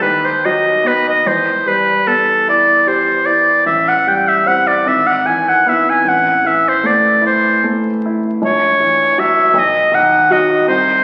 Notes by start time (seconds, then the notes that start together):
0.02 D#2 B4
0.25 C5
0.45 F#3 D#5
0.84 B3 B4
1.08 D#5
1.26 E2 C5
1.66 G3 B4
2.07 B3 A4
2.48 E4 D5
2.87 G4 C5
3.26 E4 D5
3.66 A1 E5
3.88 F#5
4.07 G3 G5
4.28 E5
4.46 C4 E4 F#5
4.67 D5
4.86 G#1 E5
5.07 F#5
5.25 E3 G#5
5.49 F#5
5.66 B3 E4 E5
5.90 G#5
6.05 A1
6.09 F#5
6.44 E3 E5
6.69 C5
6.83 A3 D5
7.22 E4
7.27 C5
7.64 A3
8.05 E4
8.42 A#1 C#5
8.80 E3
9.18 F#3 F#4 E5
9.54 B1
9.59 D#5
9.91 D#3 F#5
10.30 F#3 F#4 D#5
10.67 C2 C5